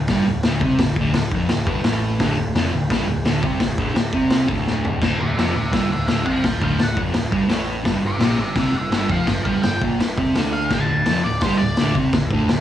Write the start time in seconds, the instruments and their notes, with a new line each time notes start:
0.07 picked electric bass G1, distorted electric guitar G2 G3, kick, snare, open hi-hat
0.26 picked electric bass D1, distorted electric guitar D2
0.43 picked electric bass D1, distorted electric guitar D2 D3, snare, open hi-hat
0.61 picked electric bass C2, distorted electric guitar C3 C4, kick
0.79 picked electric bass D1, distorted electric guitar D2, kick, snare, open hi-hat
0.96 picked electric bass D1, distorted electric guitar D2, kick
1.00 distorted electric guitar D3
1.13 picked electric bass D1, distorted electric guitar D2, snare, open hi-hat
1.32 picked electric bass F1, distorted electric guitar F2 F3, kick
1.49 picked electric bass D1, distorted electric guitar D2, snare, open hi-hat
1.66 picked electric bass G1, distorted electric guitar G2 G3, kick
1.83 picked electric bass A1, distorted electric guitar A2 A3, snare, open hi-hat
2.19 picked electric bass D1, distorted electric guitar D2 D3, kick, snare, open hi-hat
2.38 picked electric bass D1, distorted electric guitar D2
2.55 picked electric bass F1, distorted electric guitar F2 F3, snare, open hi-hat
2.73 picked electric bass D1, distorted electric guitar D2
2.90 picked electric bass G1, distorted electric guitar G2 G3, kick, snare, open hi-hat
3.07 picked electric bass D1, distorted electric guitar D2
3.24 picked electric bass D1, distorted electric guitar D2 D3, snare, open hi-hat
3.43 picked electric bass C2, distorted electric guitar C3 C4, kick
3.60 picked electric bass D1, distorted electric guitar D2, kick, snare, open hi-hat
3.78 picked electric bass D1, distorted electric guitar D2 D3, kick
3.94 picked electric bass D1, distorted electric guitar D2, snare, open hi-hat
4.13 picked electric bass C2, distorted electric guitar C3 C4, kick
4.30 snare, open hi-hat
4.48 picked electric bass D1, distorted electric guitar D2 D3, kick
4.67 snare
4.85 floor tom
5.02 picked electric bass D1, distorted electric guitar D2 D3, kick, snare, crash
5.19 picked electric bass D1, distorted electric guitar D2, lead electric guitar C5 E5
5.37 picked electric bass F1, distorted electric guitar F2 F3, lead electric guitar C5 E5, snare, open hi-hat
5.54 picked electric bass D1, distorted electric guitar D2, lead electric guitar C5 E5
5.71 picked electric bass G1, distorted electric guitar G2 G3, lead electric guitar D5 F#5, kick, snare, open hi-hat
5.90 picked electric bass D1, distorted electric guitar D2, lead electric guitar D5 F#5
6.08 picked electric bass D1, distorted electric guitar D2 D3, lead electric guitar D5 F#5, snare, open hi-hat
6.26 picked electric bass C2, distorted electric guitar C3 C4, kick
6.30 lead electric guitar F5 A5
6.43 picked electric bass D1, distorted electric guitar D2, lead electric guitar F5 A5, kick, snare, open hi-hat
6.61 picked electric bass D1, distorted electric guitar D2 D3, lead electric guitar F5 A5, kick
6.79 picked electric bass D1, distorted electric guitar D2, snare, open hi-hat
6.83 lead electric guitar F#5
6.97 picked electric bass F1, distorted electric guitar F2 F3, kick
7.13 picked electric bass D1, distorted electric guitar D2, snare, open hi-hat
7.31 picked electric bass G1, distorted electric guitar G2 G3, kick
7.49 picked electric bass A1, distorted electric guitar A2 A3, snare, open hi-hat
7.84 picked electric bass G1, distorted electric guitar G2 G3, kick, snare, open hi-hat
8.01 picked electric bass G1, distorted electric guitar G2
8.06 lead electric guitar C5 E5
8.19 picked electric bass A#1, distorted electric guitar A#2 A#3, snare, open hi-hat
8.23 lead electric guitar C5 E5
8.37 picked electric bass G1, distorted electric guitar G2, lead electric guitar C5
8.42 lead electric guitar E5
8.55 picked electric bass C2, distorted electric guitar C3 C4, kick, snare, open hi-hat
8.60 lead electric guitar D5 F#5
8.73 picked electric bass G1, distorted electric guitar G2, lead electric guitar D5
8.79 lead electric guitar F#5
8.91 picked electric bass G1, distorted electric guitar G2 G3, snare, open hi-hat
8.97 lead electric guitar D5 F#5
9.09 picked electric bass F1, distorted electric guitar F2 F3, lead electric guitar F5, kick
9.13 lead electric guitar A5
9.27 picked electric bass G1, distorted electric guitar G2, lead electric guitar F5 A5, kick, snare, open hi-hat
9.44 picked electric bass G1, distorted electric guitar G2 G3, lead electric guitar F5 A5, kick
9.63 picked electric bass G1, distorted electric guitar G2, lead electric guitar G5, snare, open hi-hat
9.82 picked electric bass A#1, distorted electric guitar A#2 A#3, kick
9.99 picked electric bass G1, distorted electric guitar G2, snare, open hi-hat
10.17 picked electric bass C2, distorted electric guitar C3 C4, kick
10.34 picked electric bass D2, distorted electric guitar D3 D4, snare, open hi-hat
10.53 lead electric guitar F5
10.70 picked electric bass D1, distorted electric guitar D2 D3, lead electric guitar A5, kick, snare, crash
10.90 picked electric bass D1, distorted electric guitar D2
11.06 picked electric bass F1, distorted electric guitar F2, snare, open hi-hat
11.10 distorted electric guitar F3
11.24 picked electric bass D1, distorted electric guitar D2, lead electric guitar D5
11.41 picked electric bass G1, distorted electric guitar G2, lead electric guitar C5, kick, snare, open hi-hat
11.45 distorted electric guitar G3
11.57 picked electric bass D1, distorted electric guitar D2, lead electric guitar D5
11.77 picked electric bass D1, distorted electric guitar D2 D3, snare, open hi-hat
11.95 picked electric bass C2, distorted electric guitar C3 C4, kick
12.13 picked electric bass D1, distorted electric guitar D2, kick, snare, open hi-hat
12.30 picked electric bass D1, distorted electric guitar D2 D3, kick
12.49 picked electric bass D1, distorted electric guitar D2, snare, open hi-hat